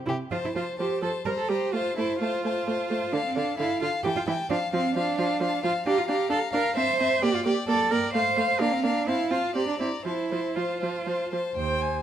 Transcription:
0.06 C3 E4 G4
0.31 F3 F4 C5 A5
0.45 E4
0.55 F3 F4 C5 A5
0.78 F3 G4 C5 A5
1.02 F3 A4 C5 A5
1.25 G3 A#4 C5 A#5
1.38 A4
1.49 G3 G4 C5 A#5
1.73 A3 F4 C5 A5
1.97 A3 E4 C5 A5
2.20 A3 F4 C5 A5
2.44 A3 C5 A5
2.67 A3 C5 A5
2.90 A3 C5 A5
3.13 D3 D4 F5 A5
3.25 C4
3.36 D3 D4 F5 A5
3.58 D3 E4 F5 A5
3.81 D3 F4 F5 A5
4.03 E3 G4 G5 A5
4.16 F4
4.27 E3 E4 G5 A5
4.50 F3 D4 F5 A5
4.73 F3 C4 F5 A5
4.96 F3 D4 F5 A5
5.18 F3 F5 A5
5.40 F3 F5 A5
5.64 F3 F4 F5 A5
5.86 D4 G4 F5 A#5
5.98 F4
6.08 D4 G4 F5 A#5
6.30 D4 A4 F5 A#5
6.53 D4 A#4 F5 A#5
6.76 C4 C5 E5 A5
7.00 C4 E5 A5
7.22 A#3 G4 D5 G5
7.35 F4
7.44 A#3 G4 D5 G5
7.68 A#3 A4 D5 G5
7.91 A#3 A#4 D5 G5
8.13 A3 C5 F5
8.36 A3 F5
8.60 A#3 D4 F5 A#5
8.73 C4
8.83 A#3 D4 F5 A#5
9.06 C4 E4 F5 A5
9.30 C4 F4 F5 A5
9.55 C4 G4 D5 A#5
9.68 D4
9.79 C4 E4 D5 A#5
10.04 F3 E4 C5 A5
10.31 F3 C5 A5
10.55 F3 F4 C5 A5
10.80 F3 C5 A5
11.06 F3 C5 A5
11.32 F3 C5 A5
11.55 D#2 C5 G5
11.81 G#5

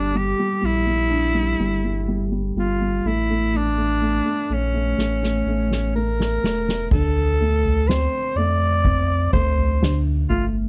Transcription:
Already playing: G1 G3 D4
0.15 G3 G4
0.39 G3
0.62 A#1 G3 E4
0.87 G3
1.10 D4
1.34 G3
1.59 G1 G3
1.84 G3
2.08 G3
2.32 G3
2.56 G1 G3 F4
2.81 G3
3.04 A1 A3 E4
3.30 A3
3.54 A3 D4
3.78 A3
4.02 A3
4.26 A3
4.50 A#1 A3 C#4
4.74 A3
4.98 A1 A3, snare
5.23 A3, snare
5.46 A1 A3
5.71 A3, snare
5.96 A3 A#4
6.20 A3, snare
6.43 E1 A3, snare
6.69 A3, snare
6.91 D2 D3 A4, kick, floor tom, crash
7.41 A3
7.64 floor tom
7.88 C4 C5, snare
8.35 F2 A3 D5
8.85 C4, kick, floor tom
9.33 D2 A3 C5, kick
9.58 floor tom
9.82 D3, snare
10.29 G1 A3 F4, floor tom

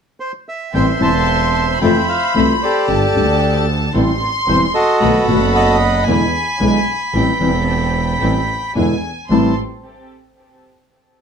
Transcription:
0.20 C5
0.49 E5
0.73 A1 E3 G3 C4 E4 G4 A4 C5 E5 G5 C6
0.99 E1 E3 G3 C4 E4 G4 A4 E5 A5
1.04 C5
1.54 A5
1.80 F2 C3 E3 A3 C4 E4 F4 A4 E5 G5 B5
1.84 C5
2.09 F5
2.34 C2 C3 E3 A3 C4 E4 F4 A4 E5
2.63 G4 A4 D5
2.88 G1 D3 G3 D4 G4 A4 A5
3.14 D2 D3 G3 D4 G4 A4
3.93 A1 E3 G3 C4 E4 G4 A4 C6
4.46 E1 E3 G3 C4 E4 G4 A4 C5
4.74 F#4 A4 D#5
5.00 B1 B2 D#3 A3 B3 D#4 F#4 A4 B5
5.27 F#1 B2 D#3 A3 B3 D#4 F#4 A4 F#5
5.55 D#5 F#5 B5
6.06 E2 B2 D3 G#3 B3 D4 E4 G#4 G#5
6.60 B1 B2 D3 G#3 B3 D4 E4 G#4
7.13 A1 E3 G3 C4 E4 G4 A4 G5
7.40 E1 E3 G3 C4 E4 G4 A4
7.67 G5
8.20 A1 E3 G3 C4 E4 G4 A4
8.75 E2 B2 D3 G#3 B3 D4 E4 G#4 G#5
9.28 A1 A2 E3 G3 C4 E4 G4 A4 A5 C6

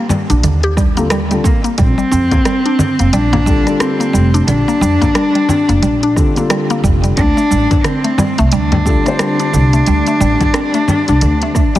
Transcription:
Already playing: D3 G3 A#3 C4 F4 A4
0.09 G3, low conga, shaker
0.30 A#1 D4, closed hi-hat, shaker
0.43 D#2 D3, closed hi-hat, shaker
0.63 G4, closed hi-hat
0.77 G3, kick, cross-stick, shaker
0.97 D3 G3 A#3 C4 F4 A4, closed hi-hat, shaker
1.10 G3, cross-stick, closed hi-hat, shaker
1.30 D3 G3 C4 F4 A4, closed hi-hat, shaker
1.44 A#1 A#3 C4, kick, shaker
1.64 A#3, closed hi-hat, shaker
1.78 A#1 G3 C4, kick, closed hi-hat, shaker
1.98 G3, shaker
2.12 F2 C4, shaker
2.31 A#3, kick, closed hi-hat, low conga, shaker
2.45 G3, cross-stick, closed hi-hat, shaker
2.66 D4, closed hi-hat
2.79 D3, low conga, shaker
2.99 F1 A#3, closed hi-hat, shaker
3.13 A#1 G3 D4, closed hi-hat, shaker
3.33 A#3, closed hi-hat, low conga
3.46 D3 G3 C4 F4 A4, kick, shaker
3.65 D3 G3 C4 F4, cross-stick, closed hi-hat, shaker
3.69 A4
3.80 C4, cross-stick, closed hi-hat, shaker
4.00 A#3, closed hi-hat, shaker
4.13 F1 G3, shaker
4.34 D4, closed hi-hat, shaker
4.47 A#1 D3 D4, closed hi-hat, shaker
4.68 A#3, shaker
4.81 F2 G3, shaker
5.01 A#3, kick, closed hi-hat, low conga, shaker
5.15 G3, cross-stick, closed hi-hat, shaker
5.35 G3, closed hi-hat
5.49 C4, low conga, shaker
5.69 F1 A#3, closed hi-hat, shaker
5.82 A#1 G3, closed hi-hat, shaker
6.03 D4, closed hi-hat
6.15 D3 G3 C4 F4 A4, kick, cross-stick, shaker
6.34 D3 G3 A#3 C4 F4, closed hi-hat, shaker
6.39 A4
6.50 G3, cross-stick, closed hi-hat, shaker
6.70 A#3, closed hi-hat, shaker
6.83 F1 G3, kick, shaker
7.04 G3, closed hi-hat, shaker
7.16 D2 C4 D4, kick, closed hi-hat, shaker
7.37 A3, shaker
7.51 A1 G3, shaker
7.71 D4, kick, closed hi-hat, low conga, shaker
7.80 D4
7.84 D3 C4, cross-stick, closed hi-hat, shaker
8.04 A3, closed hi-hat
8.18 G3, low conga, shaker
8.38 C2 A3, closed hi-hat, shaker
8.52 D2 G3 D4, closed hi-hat, shaker
8.72 G3, closed hi-hat, low conga
8.85 D3 G3 C4 F4 A4, kick, shaker
9.04 D3 G3 A3 C4 F4, cross-stick, closed hi-hat, shaker
9.08 C5
9.19 G3, cross-stick, closed hi-hat, shaker
9.39 D4, closed hi-hat, shaker
9.53 C2 D3, shaker
9.73 A3, closed hi-hat, shaker
9.86 D2 G3, closed hi-hat, shaker
10.06 A3, closed hi-hat, shaker
10.20 A1 G3, shaker
10.41 G3, kick, closed hi-hat, low conga, shaker
10.54 C4, cross-stick, closed hi-hat, shaker
10.74 A3, closed hi-hat, shaker
10.88 G3, low conga, shaker
11.08 C2 D4, closed hi-hat, shaker
11.21 D2 D3, closed hi-hat, shaker
11.42 A3, closed hi-hat
11.55 A3, kick, cross-stick, shaker
11.75 A1 D3 G3 C4, closed hi-hat

